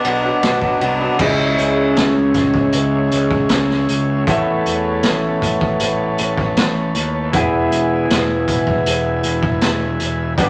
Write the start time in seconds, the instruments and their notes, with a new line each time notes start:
Already playing: transistor combo organ D4 F#4 B4
0.04 picked electric bass B1, clean electric guitar B2 F#3 B3 D4, ride
0.22 clean electric guitar F#3 B3 D4
0.42 picked electric bass B1, clean electric guitar B2 F#3 B3 D4, snare, ride
0.61 clean electric guitar F#3 B3 D4, kick
0.79 picked electric bass C2, clean electric guitar B2 F#3 B3 D4, ride
1.00 clean electric guitar F#3 B3 D4
1.19 picked electric bass C#2, clean electric guitar C#3 G#3 C#4 E4, transistor combo organ G#4 C#5 E5, kick, crash
1.58 picked electric bass C#2, closed hi-hat
1.96 picked electric bass C#2, snare, closed hi-hat
2.34 picked electric bass C#2, kick, snare, closed hi-hat
2.54 kick
2.72 picked electric bass C#2, closed hi-hat
3.11 picked electric bass C#2, closed hi-hat
3.31 kick
3.49 picked electric bass C#2, snare, closed hi-hat
3.70 snare
3.88 picked electric bass C#2, closed hi-hat
4.27 picked electric bass A1, clean electric guitar A3 B3 E4 A4 C#5, transistor combo organ B4 A5, kick, closed hi-hat
4.66 picked electric bass E2, closed hi-hat
5.03 picked electric bass A1, snare, closed hi-hat
5.42 picked electric bass A1, kick, closed hi-hat
5.61 kick
5.80 picked electric bass A1, closed hi-hat
6.18 picked electric bass A1, closed hi-hat
6.37 kick
6.57 picked electric bass A1, snare, closed hi-hat
6.95 picked electric bass D#2, closed hi-hat
7.32 picked electric bass E1, clean electric guitar E3 B3 E4, transistor combo organ E5 G#5, kick, closed hi-hat
7.36 clean electric guitar G#4
7.70 picked electric bass E1, closed hi-hat
8.09 picked electric bass E1, snare, closed hi-hat
8.47 picked electric bass E1, kick, closed hi-hat
8.67 kick
8.86 picked electric bass E1, closed hi-hat
9.23 picked electric bass E1, closed hi-hat
9.43 kick
9.61 picked electric bass E1, snare, closed hi-hat
10.00 picked electric bass E1, closed hi-hat
10.37 picked electric bass G1, clean electric guitar G3 B3 D4, transistor combo organ B4 D5 G5, kick, closed hi-hat
10.41 clean electric guitar G4